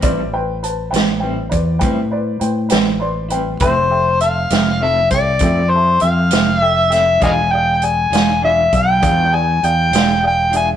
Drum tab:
HH |x-xx-xx-xx-x|x-xx-xx-xx-x|x-xx-xx-xx-x|
SD |---o-----o--|---o-----o-o|---o-----o--|
BD |o----oo-----|o----oo-----|o----oo-----|